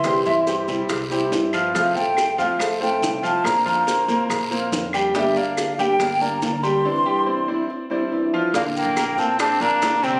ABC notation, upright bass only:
X:1
M:4/4
L:1/16
Q:1/4=141
K:Bblyd
V:1 name="Upright bass" clef=bass
C,,2 G,,4 C,, z C,,4 G,,4 | F,,2 C,,4 F,, z F,,4 C,,4 | B,,,2 F,,4 B,,, z B,,,4 F,,4 | G,,,2 D,,4 G,,, z G,,,4 D,,4 |
z16 | B,,,3 B,,,3 B,,4 B,,,4- B,,, B,,, |]